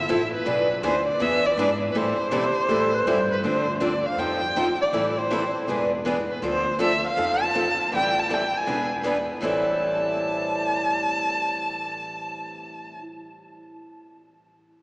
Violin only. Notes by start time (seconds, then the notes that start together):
Already playing: E5
0.33 B4
0.85 C5
1.08 D5
1.22 E5
1.46 D5
1.92 B4
1.97 C5
3.32 B4
3.46 C5
3.83 D5
4.06 F5
4.19 G5
4.81 D5
5.18 C5
6.31 B4
6.45 C5
6.82 E5
7.07 F5
7.43 A5
7.96 G5
8.20 A5
8.34 G5
8.57 G#5
9.44 A5